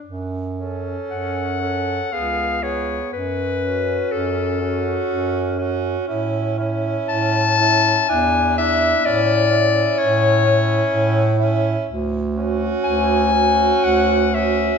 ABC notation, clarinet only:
X:1
M:3/4
L:1/8
Q:1/4=61
K:F#m
V:1 name="Clarinet"
z2 f2 ^e c | B2 A3 z | z2 a2 g e | d2 c3 z |
[K:Dlyd] z2 g2 f e |]